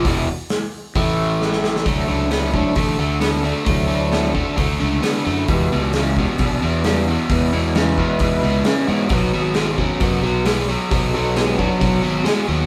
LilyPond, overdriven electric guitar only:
\new Staff \with { instrumentName = "Overdriven electric guitar" } { \clef bass \time 4/4 \key e \mixolydian \tempo 4 = 132 <e, b, e>8 r4. <a, e a>2 | <d a>8 <d a>8 <d b>8 <d a>8 <d a>8 <d a>8 <d b>8 <d a>8 | <d a>8 <d a>8 <d b>8 <d a>8 <d a>8 <d a>8 <d b>8 <d a>8 | <e, b,>8 <e, b,>8 <e, cis>8 <e, b,>8 <e, b,>8 <e, b,>8 <e, cis>8 <e, b,>8 |
<e, b,>8 <e, b,>8 <e, cis>8 <e, b,>8 <e, b,>8 <e, b,>8 <e, cis>8 <e, b,>8 | <b, fis>8 <b, fis>8 <b, gis>8 <b, fis>8 <b, fis>8 <b, fis>8 <b, gis>8 <b, fis>8 | <b, fis>8 <b, fis>8 <b, gis>8 <b, fis>8 <b, fis>8 <b, fis>8 <b, gis>8 <b, fis>8 | }